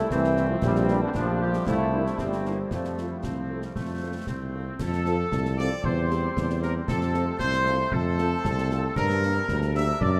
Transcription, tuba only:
0.11 C2
0.62 A#1
1.15 A#1
1.67 C2
2.20 G1
2.72 F2
3.24 C2
3.76 F2
4.28 C2
4.81 F2
5.32 C2
5.85 E2
6.37 E2
6.89 F2
7.41 C2
7.92 F2
8.45 C2
8.96 G2
9.48 D2
10.01 F#2

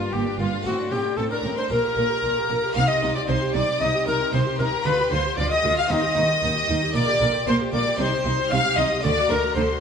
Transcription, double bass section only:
0.13 G1
0.39 G1
0.65 A1
0.91 A1
1.18 A1
1.44 A1
1.70 A#1
1.97 A#1
2.23 A#1
2.50 A#1
2.76 C2
3.03 C2
3.29 C2
3.55 C2
3.81 C2
4.07 C2
4.33 C2
4.59 C2
4.86 D2
5.12 D2
5.38 D2
5.64 D2
5.90 D#2
6.16 D#2
6.42 D#2
6.68 D#2
6.95 A#1
7.21 A#1
7.47 A#1
7.73 A#1
7.99 C2
8.25 C2
8.51 C2
8.77 C2
9.04 D2
9.30 D2
9.56 D2

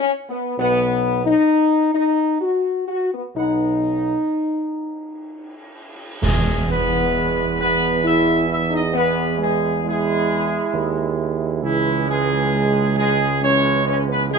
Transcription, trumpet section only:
0.58 B4 F#5
3.35 B4 F#5
6.22 G#4
6.69 B4
7.59 B4
8.05 E5
8.51 E5
8.74 D#5
8.95 B4
9.41 G#4
9.86 G#4
11.63 E4
12.09 G#4
12.96 G#4
13.42 C#5
13.85 C#5
14.11 B4
14.32 G#4

